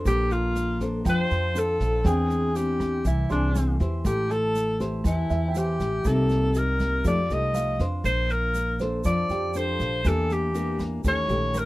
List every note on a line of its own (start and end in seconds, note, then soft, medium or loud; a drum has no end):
0.00 0.77 D4 medium
0.00 0.77 A4 medium
0.00 0.77 C5 medium
0.05 1.01 A#1 loud
0.05 1.03 A#3 medium
0.05 0.34 G4 loud
0.05 kick medium
0.05 cross-stick medium
0.05 snare soft
0.05 shaker medium
0.31 0.81 F4 loud
0.31 snare soft
0.31 shaker soft
0.55 snare soft
0.55 shaker medium
0.80 1.51 D4 medium
0.80 1.52 A4 medium
0.80 1.52 C5 medium
0.80 kick soft
0.80 snare soft
0.80 shaker soft
1.05 1.29 F2 medium
1.05 2.03 F3 medium
1.05 2.04 G5 medium
1.05 kick medium
1.05 cross-stick medium
1.05 snare soft
1.05 shaker medium
1.09 1.60 C5 loud
1.24 2.36 C6 soft
1.31 1.77 F2 medium
1.31 snare soft
1.31 shaker soft
1.55 2.03 D4 medium
1.55 2.03 A4 medium
1.55 2.08 A4 loud
1.55 2.03 C5 medium
1.55 snare soft
1.55 shaker medium
1.80 2.03 A#1 medium
1.80 kick soft
1.80 snare soft
1.80 shaker soft
2.04 3.01 E2 medium
2.04 3.02 E3 medium
2.04 2.51 C4 medium
2.04 2.51 D4 medium
2.04 2.51 G#4 medium
2.04 2.58 G#4 loud
2.04 3.21 G5 medium
2.04 kick medium
2.04 cross-stick medium
2.04 snare soft
2.04 shaker medium
2.29 snare soft
2.29 shaker soft
2.55 3.05 C4 medium
2.55 3.05 D4 medium
2.55 3.06 G4 medium
2.55 snare soft
2.55 shaker medium
2.80 kick soft
2.80 cross-stick medium
2.80 snare soft
2.80 shaker soft
3.04 3.28 C2 medium
3.04 4.02 E3 medium
3.04 3.29 E4 medium
3.04 kick medium
3.04 snare soft
3.04 shaker medium
3.30 3.77 C2 medium
3.30 3.76 C4 medium
3.30 3.76 D4 medium
3.30 3.78 D4 medium
3.30 3.76 G#4 medium
3.30 4.26 C6 medium
3.30 snare soft
3.30 shaker soft
3.55 cross-stick medium
3.55 snare soft
3.55 shaker medium
3.80 4.03 E2 medium
3.80 4.76 E4 medium
3.80 4.76 G4 medium
3.80 4.76 C5 medium
3.80 kick soft
3.80 snare soft
3.80 shaker soft
4.05 5.01 A1 loud
4.05 5.03 A3 medium
4.05 4.33 G4 loud
4.05 kick medium
4.05 cross-stick medium
4.05 snare soft
4.05 shaker medium
4.30 4.81 A4 loud
4.30 5.46 A5 soft
4.30 snare soft
4.30 shaker soft
4.55 snare soft
4.55 shaker medium
4.80 5.51 E4 medium
4.80 5.51 G4 medium
4.80 5.51 C5 medium
4.80 kick soft
4.80 snare soft
4.80 shaker soft
5.04 5.28 E2 medium
5.04 6.03 E3 medium
5.04 5.59 E4 medium
5.04 kick medium
5.04 cross-stick medium
5.04 snare soft
5.04 shaker medium
5.30 5.77 E2 medium
5.30 6.26 E5 medium
5.30 snare soft
5.30 shaker soft
5.48 6.41 G5 soft
5.55 5.89 E4 medium
5.55 5.89 G4 medium
5.55 6.09 G4 medium
5.55 5.89 C5 medium
5.55 snare soft
5.55 shaker medium
5.80 6.03 A1 medium
5.80 kick soft
5.80 snare soft
5.80 shaker soft
6.04 7.01 C2 loud
6.04 7.03 C3 medium
6.04 6.51 A#3 medium
6.04 6.52 D#4 medium
6.04 6.52 G4 medium
6.04 6.59 A4 loud
6.04 kick medium
6.04 cross-stick medium
6.04 snare soft
6.04 shaker medium
6.29 snare soft
6.29 shaker soft
6.54 7.03 A#3 medium
6.54 7.03 D#4 medium
6.54 7.03 G4 medium
6.54 7.06 A#4 loud
6.54 snare soft
6.54 shaker medium
6.79 kick soft
6.79 cross-stick medium
6.79 snare soft
6.79 shaker soft
7.04 7.28 F2 medium
7.04 8.02 F3 medium
7.04 7.19 A3 medium
7.04 7.19 D#4 medium
7.04 7.20 G4 medium
7.04 7.35 D5 loud
7.04 kick medium
7.04 snare soft
7.04 shaker medium
7.30 7.76 C2 medium
7.30 7.76 A3 medium
7.30 7.76 D#4 medium
7.30 7.77 G4 medium
7.30 7.82 D#5 medium
7.30 snare soft
7.30 shaker soft
7.54 8.26 F5 medium
7.54 cross-stick medium
7.54 snare soft
7.54 shaker medium
7.79 8.03 F2 medium
7.79 8.76 D4 medium
7.79 8.76 C5 medium
7.79 kick soft
7.79 snare soft
7.79 shaker soft
8.04 9.01 A#1 medium
8.04 9.02 A#3 medium
8.04 8.33 C5 loud
8.04 kick medium
8.04 cross-stick medium
8.04 snare soft
8.04 shaker medium
8.29 8.81 A#4 loud
8.29 snare soft
8.29 shaker soft
8.54 snare soft
8.54 shaker medium
8.79 9.51 D4 medium
8.79 9.51 A4 medium
8.79 9.95 C5 soft
8.79 9.52 C5 medium
8.79 kick soft
8.79 snare soft
8.79 shaker soft
9.04 9.28 F2 medium
9.04 10.02 F3 medium
9.04 9.58 D5 loud
9.04 kick medium
9.04 cross-stick medium
9.04 snare soft
9.04 shaker medium
9.29 9.76 F2 medium
9.29 10.26 G4 medium
9.29 snare soft
9.29 shaker soft
9.54 10.03 D4 medium
9.54 10.03 A4 medium
9.54 10.03 C5 medium
9.54 10.09 C5 medium
9.54 snare soft
9.54 shaker medium
9.79 10.03 A#1 medium
9.79 kick soft
9.79 snare soft
9.79 shaker soft
10.05 11.01 E2 loud
10.05 11.02 E3 medium
10.05 10.51 A#3 medium
10.05 10.51 D4 medium
10.05 10.51 G4 medium
10.05 10.34 A4 medium
10.05 kick medium
10.05 cross-stick medium
10.05 snare soft
10.05 shaker medium
10.30 10.81 G4 medium
10.30 snare soft
10.30 shaker soft
10.54 11.03 A#3 medium
10.54 11.03 D4 medium
10.54 11.03 G4 medium
10.54 snare soft
10.54 shaker medium
10.79 kick soft
10.79 cross-stick medium
10.79 snare soft
10.79 shaker soft
11.04 11.28 D#2 medium
11.04 11.65 D#3 medium
11.04 11.26 A3 medium
11.04 11.26 C#4 medium
11.04 11.26 G4 medium
11.04 11.59 C#5 loud
11.04 kick medium
11.04 snare soft
11.04 shaker medium
11.29 11.65 A#1 medium
11.29 11.65 A3 medium
11.29 11.65 C#4 medium
11.29 11.65 G4 medium
11.29 snare soft
11.29 shaker soft
11.54 11.65 A#4 soft
11.54 11.65 A#4 loud
11.54 cross-stick medium
11.54 snare soft
11.54 shaker medium